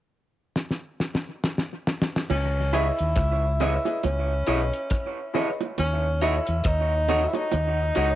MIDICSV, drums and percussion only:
0, 0, Header, 1, 2, 480
1, 0, Start_track
1, 0, Key_signature, 4, "minor"
1, 0, Tempo, 871333
1, 1263, Time_signature, 4, 2, 24, 8
1, 4491, End_track
2, 0, Start_track
2, 0, Title_t, "Drums"
2, 308, Note_on_c, 9, 38, 53
2, 363, Note_off_c, 9, 38, 0
2, 389, Note_on_c, 9, 38, 48
2, 444, Note_off_c, 9, 38, 0
2, 551, Note_on_c, 9, 38, 58
2, 606, Note_off_c, 9, 38, 0
2, 632, Note_on_c, 9, 38, 75
2, 687, Note_off_c, 9, 38, 0
2, 791, Note_on_c, 9, 38, 77
2, 846, Note_off_c, 9, 38, 0
2, 870, Note_on_c, 9, 38, 68
2, 925, Note_off_c, 9, 38, 0
2, 1031, Note_on_c, 9, 38, 78
2, 1086, Note_off_c, 9, 38, 0
2, 1111, Note_on_c, 9, 38, 99
2, 1166, Note_off_c, 9, 38, 0
2, 1191, Note_on_c, 9, 38, 82
2, 1246, Note_off_c, 9, 38, 0
2, 1265, Note_on_c, 9, 49, 73
2, 1266, Note_on_c, 9, 60, 66
2, 1320, Note_off_c, 9, 49, 0
2, 1321, Note_off_c, 9, 60, 0
2, 1507, Note_on_c, 9, 42, 81
2, 1562, Note_off_c, 9, 42, 0
2, 1645, Note_on_c, 9, 42, 48
2, 1700, Note_off_c, 9, 42, 0
2, 1739, Note_on_c, 9, 42, 89
2, 1744, Note_on_c, 9, 36, 109
2, 1749, Note_on_c, 9, 37, 97
2, 1794, Note_off_c, 9, 42, 0
2, 1799, Note_off_c, 9, 36, 0
2, 1804, Note_off_c, 9, 37, 0
2, 1984, Note_on_c, 9, 42, 62
2, 1984, Note_on_c, 9, 61, 63
2, 1989, Note_on_c, 9, 37, 60
2, 2039, Note_off_c, 9, 42, 0
2, 2039, Note_off_c, 9, 61, 0
2, 2044, Note_off_c, 9, 37, 0
2, 2123, Note_on_c, 9, 60, 63
2, 2126, Note_on_c, 9, 42, 51
2, 2178, Note_off_c, 9, 60, 0
2, 2181, Note_off_c, 9, 42, 0
2, 2223, Note_on_c, 9, 42, 74
2, 2224, Note_on_c, 9, 60, 73
2, 2278, Note_off_c, 9, 42, 0
2, 2279, Note_off_c, 9, 60, 0
2, 2461, Note_on_c, 9, 42, 71
2, 2516, Note_off_c, 9, 42, 0
2, 2608, Note_on_c, 9, 42, 52
2, 2663, Note_off_c, 9, 42, 0
2, 2700, Note_on_c, 9, 42, 72
2, 2705, Note_on_c, 9, 36, 101
2, 2708, Note_on_c, 9, 37, 90
2, 2755, Note_off_c, 9, 42, 0
2, 2760, Note_off_c, 9, 36, 0
2, 2763, Note_off_c, 9, 37, 0
2, 2945, Note_on_c, 9, 61, 67
2, 2947, Note_on_c, 9, 42, 64
2, 3000, Note_off_c, 9, 61, 0
2, 3002, Note_off_c, 9, 42, 0
2, 3088, Note_on_c, 9, 42, 42
2, 3088, Note_on_c, 9, 60, 67
2, 3143, Note_off_c, 9, 42, 0
2, 3143, Note_off_c, 9, 60, 0
2, 3183, Note_on_c, 9, 42, 76
2, 3183, Note_on_c, 9, 60, 67
2, 3238, Note_off_c, 9, 42, 0
2, 3238, Note_off_c, 9, 60, 0
2, 3423, Note_on_c, 9, 42, 81
2, 3478, Note_off_c, 9, 42, 0
2, 3562, Note_on_c, 9, 42, 52
2, 3617, Note_off_c, 9, 42, 0
2, 3658, Note_on_c, 9, 42, 94
2, 3663, Note_on_c, 9, 36, 118
2, 3668, Note_on_c, 9, 37, 94
2, 3713, Note_off_c, 9, 42, 0
2, 3718, Note_off_c, 9, 36, 0
2, 3723, Note_off_c, 9, 37, 0
2, 3903, Note_on_c, 9, 42, 65
2, 3903, Note_on_c, 9, 61, 62
2, 3958, Note_off_c, 9, 42, 0
2, 3958, Note_off_c, 9, 61, 0
2, 4040, Note_on_c, 9, 60, 65
2, 4047, Note_on_c, 9, 42, 47
2, 4095, Note_off_c, 9, 60, 0
2, 4102, Note_off_c, 9, 42, 0
2, 4140, Note_on_c, 9, 60, 81
2, 4143, Note_on_c, 9, 42, 69
2, 4195, Note_off_c, 9, 60, 0
2, 4199, Note_off_c, 9, 42, 0
2, 4380, Note_on_c, 9, 42, 80
2, 4435, Note_off_c, 9, 42, 0
2, 4491, End_track
0, 0, End_of_file